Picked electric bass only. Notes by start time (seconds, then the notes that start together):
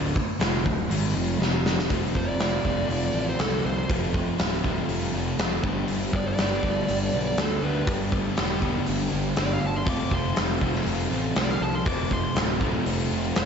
Already playing: D1
0.16 muted picked electric bass stroke
0.41 F1
0.66 D1
0.91 G#1
1.16 F1
1.39 F1
1.91 F1
2.15 F1
2.39 F1
2.65 F1
2.89 F1
3.14 A1
3.39 C2
3.65 C2
3.90 F1
4.40 D1
4.89 F1
5.14 F1
5.39 F1
5.64 G1
5.89 G1
6.13 G1
6.39 G1
6.63 G1
6.89 G1
7.13 B1
7.38 D2
7.63 D2
7.87 G1
8.39 E1
8.88 G1
9.13 G1
9.38 G1
9.64 G1
9.86 F1
10.12 F1
10.39 F1
10.61 F1
10.87 F1
11.11 A1
11.36 C2
11.61 C2
11.86 F1
12.35 D1
12.87 F1
13.11 F1
13.38 F1